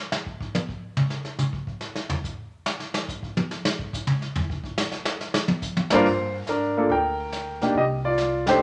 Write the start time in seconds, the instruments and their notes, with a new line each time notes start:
0.12 snare
0.26 kick
0.41 kick
0.55 hi-hat pedal, high tom
0.69 kick
0.97 mid tom
1.10 snare
1.25 snare
1.39 hi-hat pedal, mid tom
1.53 kick
1.67 kick
1.81 snare
1.96 snare
2.10 floor tom
2.24 kick, hi-hat pedal
2.66 snare
2.80 snare
2.94 snare
3.08 kick, hi-hat pedal
3.23 kick
3.37 high tom
3.51 snare
3.65 snare
3.79 kick
3.93 kick, hi-hat pedal
4.07 mid tom
4.22 snare
4.36 floor tom
4.50 kick
4.64 kick
4.78 snare, hi-hat pedal
4.92 snare
5.05 snare
5.21 snare
5.34 snare
5.48 high tom
5.62 kick, hi-hat pedal
5.77 high tom
5.90 grand piano G2 A#3 D4 F4 A#4 C5, snare
6.04 upright bass G2, brush sweep, kick, crash
6.47 upright bass G#2, grand piano D4 A#4, snare, hi-hat pedal
6.77 grand piano A#3 D4 F4 A4
6.89 upright bass D2, grand piano A#4 G5, brush sweep, kick
7.32 snare, hi-hat pedal
7.60 upright bass B1, grand piano A#3 D4 D#4 G4, snare
7.75 upright bass C2, grand piano G4 D#5, brush sweep, kick
8.05 grand piano F4 D5
8.18 snare, hi-hat pedal
8.46 grand piano A3 D4 D#4 G4 C5, snare, ride